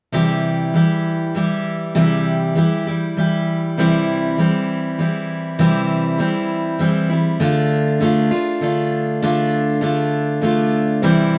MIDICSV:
0, 0, Header, 1, 2, 480
1, 0, Start_track
1, 0, Tempo, 605449
1, 109, Time_signature, 3, 2, 24, 8
1, 9022, End_track
2, 0, Start_track
2, 0, Title_t, "Steel-string acoustic guitar"
2, 0, Program_c, 0, 25
2, 98, Note_on_c, 0, 48, 70
2, 103, Note_on_c, 0, 52, 65
2, 108, Note_on_c, 0, 55, 69
2, 111, Note_on_c, 0, 64, 65
2, 112, Note_on_c, 0, 67, 76
2, 583, Note_off_c, 0, 52, 0
2, 585, Note_off_c, 0, 48, 0
2, 586, Note_on_c, 0, 52, 50
2, 592, Note_off_c, 0, 55, 0
2, 595, Note_off_c, 0, 64, 0
2, 595, Note_on_c, 0, 55, 55
2, 598, Note_on_c, 0, 64, 54
2, 604, Note_off_c, 0, 67, 0
2, 607, Note_on_c, 0, 67, 63
2, 1064, Note_off_c, 0, 52, 0
2, 1068, Note_on_c, 0, 52, 58
2, 1073, Note_off_c, 0, 55, 0
2, 1076, Note_on_c, 0, 55, 62
2, 1083, Note_off_c, 0, 64, 0
2, 1086, Note_on_c, 0, 64, 62
2, 1087, Note_off_c, 0, 67, 0
2, 1090, Note_on_c, 0, 67, 64
2, 1545, Note_on_c, 0, 48, 79
2, 1547, Note_off_c, 0, 52, 0
2, 1548, Note_off_c, 0, 55, 0
2, 1550, Note_on_c, 0, 52, 69
2, 1551, Note_on_c, 0, 55, 70
2, 1552, Note_off_c, 0, 64, 0
2, 1555, Note_on_c, 0, 64, 76
2, 1559, Note_off_c, 0, 67, 0
2, 1562, Note_on_c, 0, 67, 85
2, 2015, Note_off_c, 0, 52, 0
2, 2024, Note_off_c, 0, 55, 0
2, 2024, Note_on_c, 0, 52, 54
2, 2030, Note_off_c, 0, 48, 0
2, 2032, Note_off_c, 0, 64, 0
2, 2034, Note_on_c, 0, 55, 53
2, 2038, Note_off_c, 0, 67, 0
2, 2041, Note_on_c, 0, 64, 60
2, 2049, Note_on_c, 0, 67, 61
2, 2264, Note_off_c, 0, 67, 0
2, 2269, Note_off_c, 0, 52, 0
2, 2274, Note_off_c, 0, 55, 0
2, 2274, Note_on_c, 0, 67, 43
2, 2276, Note_off_c, 0, 64, 0
2, 2285, Note_on_c, 0, 64, 43
2, 2298, Note_on_c, 0, 55, 36
2, 2511, Note_off_c, 0, 55, 0
2, 2511, Note_on_c, 0, 52, 50
2, 2514, Note_off_c, 0, 67, 0
2, 2516, Note_off_c, 0, 64, 0
2, 2520, Note_on_c, 0, 55, 53
2, 2526, Note_on_c, 0, 64, 50
2, 2533, Note_on_c, 0, 67, 64
2, 2989, Note_off_c, 0, 52, 0
2, 2993, Note_off_c, 0, 55, 0
2, 2993, Note_on_c, 0, 48, 67
2, 2999, Note_on_c, 0, 52, 77
2, 3001, Note_off_c, 0, 64, 0
2, 3002, Note_on_c, 0, 55, 76
2, 3004, Note_off_c, 0, 67, 0
2, 3007, Note_on_c, 0, 60, 84
2, 3012, Note_on_c, 0, 64, 81
2, 3463, Note_off_c, 0, 52, 0
2, 3470, Note_off_c, 0, 55, 0
2, 3472, Note_on_c, 0, 52, 60
2, 3474, Note_off_c, 0, 48, 0
2, 3475, Note_off_c, 0, 60, 0
2, 3480, Note_on_c, 0, 55, 58
2, 3484, Note_off_c, 0, 64, 0
2, 3485, Note_on_c, 0, 60, 65
2, 3493, Note_on_c, 0, 64, 69
2, 3942, Note_off_c, 0, 52, 0
2, 3952, Note_on_c, 0, 52, 56
2, 3953, Note_off_c, 0, 55, 0
2, 3958, Note_off_c, 0, 60, 0
2, 3962, Note_on_c, 0, 55, 54
2, 3964, Note_off_c, 0, 64, 0
2, 3968, Note_on_c, 0, 60, 58
2, 3974, Note_on_c, 0, 64, 66
2, 4421, Note_off_c, 0, 52, 0
2, 4428, Note_off_c, 0, 55, 0
2, 4429, Note_on_c, 0, 48, 78
2, 4431, Note_on_c, 0, 52, 76
2, 4433, Note_off_c, 0, 60, 0
2, 4436, Note_off_c, 0, 64, 0
2, 4438, Note_on_c, 0, 55, 74
2, 4443, Note_on_c, 0, 60, 88
2, 4446, Note_on_c, 0, 64, 79
2, 4892, Note_off_c, 0, 52, 0
2, 4900, Note_off_c, 0, 55, 0
2, 4901, Note_on_c, 0, 52, 60
2, 4906, Note_off_c, 0, 60, 0
2, 4910, Note_on_c, 0, 55, 56
2, 4912, Note_off_c, 0, 48, 0
2, 4912, Note_off_c, 0, 64, 0
2, 4916, Note_on_c, 0, 60, 59
2, 4922, Note_on_c, 0, 64, 61
2, 5373, Note_off_c, 0, 52, 0
2, 5382, Note_off_c, 0, 55, 0
2, 5382, Note_on_c, 0, 52, 58
2, 5390, Note_off_c, 0, 60, 0
2, 5392, Note_on_c, 0, 55, 57
2, 5398, Note_off_c, 0, 64, 0
2, 5400, Note_on_c, 0, 60, 69
2, 5407, Note_on_c, 0, 64, 62
2, 5615, Note_off_c, 0, 64, 0
2, 5624, Note_on_c, 0, 64, 52
2, 5626, Note_off_c, 0, 60, 0
2, 5628, Note_off_c, 0, 52, 0
2, 5633, Note_off_c, 0, 55, 0
2, 5635, Note_on_c, 0, 60, 44
2, 5648, Note_on_c, 0, 55, 38
2, 5864, Note_on_c, 0, 50, 76
2, 5868, Note_off_c, 0, 55, 0
2, 5869, Note_off_c, 0, 64, 0
2, 5871, Note_off_c, 0, 60, 0
2, 5871, Note_on_c, 0, 57, 72
2, 5874, Note_on_c, 0, 62, 84
2, 5882, Note_on_c, 0, 65, 79
2, 6334, Note_off_c, 0, 50, 0
2, 6343, Note_off_c, 0, 57, 0
2, 6344, Note_on_c, 0, 50, 60
2, 6353, Note_on_c, 0, 57, 63
2, 6354, Note_off_c, 0, 62, 0
2, 6357, Note_off_c, 0, 65, 0
2, 6362, Note_on_c, 0, 62, 67
2, 6369, Note_on_c, 0, 65, 64
2, 6577, Note_off_c, 0, 65, 0
2, 6587, Note_on_c, 0, 65, 52
2, 6588, Note_off_c, 0, 50, 0
2, 6589, Note_off_c, 0, 62, 0
2, 6593, Note_off_c, 0, 57, 0
2, 6599, Note_on_c, 0, 62, 40
2, 6609, Note_on_c, 0, 57, 40
2, 6823, Note_off_c, 0, 57, 0
2, 6824, Note_on_c, 0, 50, 58
2, 6829, Note_off_c, 0, 62, 0
2, 6829, Note_off_c, 0, 65, 0
2, 6833, Note_on_c, 0, 57, 62
2, 6839, Note_on_c, 0, 62, 62
2, 6845, Note_on_c, 0, 65, 57
2, 7303, Note_off_c, 0, 50, 0
2, 7305, Note_off_c, 0, 57, 0
2, 7312, Note_off_c, 0, 62, 0
2, 7312, Note_on_c, 0, 50, 75
2, 7314, Note_on_c, 0, 57, 70
2, 7316, Note_off_c, 0, 65, 0
2, 7322, Note_on_c, 0, 62, 78
2, 7325, Note_on_c, 0, 65, 87
2, 7767, Note_off_c, 0, 50, 0
2, 7777, Note_on_c, 0, 50, 63
2, 7778, Note_off_c, 0, 57, 0
2, 7782, Note_off_c, 0, 62, 0
2, 7787, Note_on_c, 0, 57, 64
2, 7790, Note_off_c, 0, 65, 0
2, 7792, Note_on_c, 0, 62, 59
2, 7799, Note_on_c, 0, 65, 71
2, 8247, Note_off_c, 0, 50, 0
2, 8256, Note_off_c, 0, 57, 0
2, 8257, Note_on_c, 0, 50, 61
2, 8265, Note_off_c, 0, 62, 0
2, 8266, Note_on_c, 0, 57, 62
2, 8270, Note_off_c, 0, 65, 0
2, 8274, Note_on_c, 0, 62, 64
2, 8280, Note_on_c, 0, 65, 61
2, 8739, Note_on_c, 0, 48, 69
2, 8742, Note_off_c, 0, 50, 0
2, 8745, Note_on_c, 0, 52, 75
2, 8746, Note_off_c, 0, 57, 0
2, 8749, Note_on_c, 0, 55, 83
2, 8751, Note_off_c, 0, 62, 0
2, 8751, Note_off_c, 0, 65, 0
2, 8754, Note_on_c, 0, 60, 80
2, 8754, Note_on_c, 0, 64, 80
2, 9022, Note_off_c, 0, 48, 0
2, 9022, Note_off_c, 0, 52, 0
2, 9022, Note_off_c, 0, 55, 0
2, 9022, Note_off_c, 0, 60, 0
2, 9022, Note_off_c, 0, 64, 0
2, 9022, End_track
0, 0, End_of_file